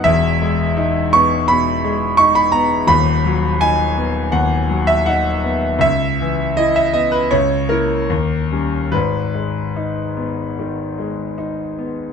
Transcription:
<<
  \new Staff \with { instrumentName = "Grand piano" } { \time 4/4 \key gis \minor \tempo 4 = 80 e''4. cis'''8 b''4 cis'''16 b''16 ais''8 | b''4 gis''4 fis''8. e''16 fis''8 r8 | e''4 dis''16 e''16 dis''16 b'16 cis''8 ais'4. | b'2.~ b'8 r8 | }
  \new Staff \with { instrumentName = "Grand piano" } { \clef bass \time 4/4 \key gis \minor <e,, e,>8 gis8 dis'8 b8 b,8 gis8 dis'8 b8 | <dis,, dis,>8 fis8 dis'8 b8 dis,8 fis8 dis'8 b8 | cis,8 e8 e'8 b8 cis,8 <ais e'>8 dis,8 <g cis'>8 | <gis,, gis,>8 gis8 dis'8 b8 dis8 gis8 dis'8 b8 | }
>>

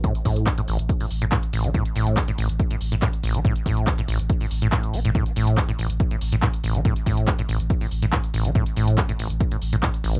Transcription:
<<
  \new Staff \with { instrumentName = "Acid bass" } { \clef bass \time 4/4 \key g \mixolydian \tempo 4 = 141 a,16 r16 a,8 g,16 a,16 a,,16 r8 a,16 r16 a,16 a,16 r16 a,,16 e16 | a,16 r16 a,8 g,16 a,16 a,,16 r8 a,16 r16 a,16 a,16 r16 a,,16 e16 | a,16 r16 a,8 g,16 a,16 a,,16 r8 a,16 r16 a,16 a,8 c'16 a,16 | a,16 r16 a,8 g,16 a,16 a,,16 r8 a,16 r16 a,16 a,16 r16 a,,16 e16 |
a,16 r16 a,8 g,16 a,16 a,,16 r8 a,16 r16 a,16 a,16 r16 a,,16 e16 | a,16 r16 a,8 g,16 a,16 a,,16 r8 a,16 r16 a,16 a,16 r16 a,,16 e16 | }
  \new Staff \with { instrumentName = "Sub bass" } { \clef bass \time 4/4 \key g \mixolydian r8 a,,16 a,,16 r8 a,,16 a,,16 r8 a,,16 a,,16 r8 a,,16 a,,16 | r8 a,,16 a,,16 r8 a,,16 a,,16 r8 a,,16 a,,16 r8 a,,16 a,,16 | r8 a,,16 a,,16 r8 a,,16 a,,16 r8 a,,16 a,,16 r8 a,,16 a,,16 | r8 a,,16 a,,16 r8 a,,16 a,,16 r8 a,,16 a,,16 r8 a,,16 a,,16 |
r8 a,,16 a,,16 r8 a,,16 a,,16 r8 a,,16 a,,16 r8 a,,16 a,,16 | r8 a,,16 a,,16 r8 a,,16 a,,16 r8 a,,16 a,,16 r8 a,,16 a,,16 | }
  \new DrumStaff \with { instrumentName = "Drums" } \drummode { \time 4/4 <hh bd>16 hh16 <hho bd>16 hh16 <hc hh bd>16 hh16 hho16 hh16 <hh bd>16 hho16 hho16 hh16 <hc hh bd>16 hh16 hho16 hh16 | <hh bd>16 hh16 hho16 hh16 <hc hh bd>16 hh16 hho16 hh16 <hh bd>16 hh16 hho16 hh16 <hc hh bd>16 hh16 hho16 hh16 | <hh bd>16 hh16 <hho bd>16 hh16 <hc hh bd>16 hh16 hho16 hh16 <hh bd>16 hho16 hho16 hh16 <hc hh bd>16 hh16 hho16 hh16 | <hh bd>16 hh16 hho16 hh16 <hc hh bd>16 hh16 hho16 hh16 <hh bd>16 hh16 hho16 hh16 <hc hh bd>16 hh16 hho16 hh16 |
<hh bd>16 hh16 <hho bd>16 hh16 <hc hh bd>16 hh16 hho16 hh16 <hh bd>16 hho16 hho16 hh16 <hc hh bd>16 hh16 hho16 hh16 | <hh bd>16 hh16 hho16 hh16 <hc hh bd>16 hh16 hho16 hh16 <hh bd>16 hh16 hho16 hh16 <hc hh bd>16 hh16 hho16 hh16 | }
>>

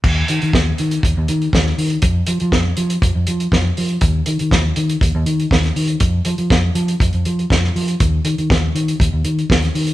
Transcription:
<<
  \new Staff \with { instrumentName = "Fingered electric bass" } { \clef bass \time 4/4 \key f \dorian \tempo 4 = 120 ees,8 ees16 ees16 ees,8 ees8 ees,16 ees,16 ees8 ees,8 ees8 | f,8 f16 f16 f,8 f8 f,16 f,16 f8 f,8 f8 | ees,8 ees16 ees16 ees,8 ees8 ees,16 ees,16 ees8 ees,8 ees8 | f,8 f16 f16 f,8 f8 f,16 f,16 f8 f,8 f8 |
ees,8 ees16 ees16 ees,8 ees8 ees,16 ees,16 ees8 ees,8 ees8 | }
  \new DrumStaff \with { instrumentName = "Drums" } \drummode { \time 4/4 <cymc bd>8 hh16 hh16 <bd sn>8 hh16 hh16 <hh bd>8 hh16 hh16 <bd sn>16 sn16 hho16 hh16 | <hh bd>8 hh16 hh16 <bd sn>8 hh16 hh16 <hh bd>8 hh16 hh16 <bd sn>8 hho16 hh16 | <hh bd>8 hh16 hh16 <bd sn>8 hh16 hh16 <hh bd>8 hh16 hh16 <bd sn>16 <hh sn>16 hho16 hh16 | <hh bd>8 hh16 hh16 <bd sn>8 hh16 hh16 <hh bd>16 hh16 hh16 hh16 <bd sn>16 sn16 hho16 hh16 |
<hh bd>8 hh16 hh16 <bd sn>8 hh16 hh16 <hh bd>8 hh16 hh16 <bd sn>16 <hh sn>16 hho16 hh16 | }
>>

